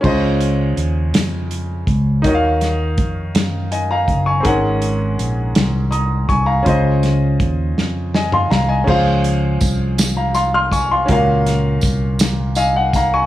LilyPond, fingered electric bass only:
\new Staff \with { instrumentName = "Fingered electric bass" } { \clef bass \time 6/8 \key des \major \tempo 4. = 54 des,4 ees,8 f,4 des,8 | ees,4 f,8 ges,4 ges,,8 | aes,,4 bes,,8 c,4 c,8 | des,4 ees,8 f,4 c,8 |
des,4 c,2 | des,4 c,2 | }